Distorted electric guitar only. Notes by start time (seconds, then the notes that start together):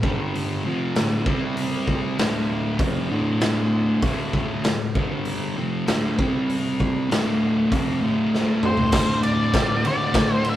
0.02 G2 D3 G3
0.65 F2 C3 F3
0.97 D2 A2 D3
1.26 C3 G3 C4
2.18 D2 A2 D3
2.78 F2 C3 F3
3.09 D2 A2 D3
4.03 D2 A2 D3
4.64 D2 A2
4.95 G2 D3 G3
5.57 F2 C3 F3
5.86 D2 A2 D3
6.18 C3 G3 C4
7.10 D2 A2 D3
7.71 F2 C3 F3
8.01 D2 A2 D3
8.93 D2 A2 D3
9.54 D2 A2 D3
9.84 D2 A2 D3
10.14 D2 A2 D3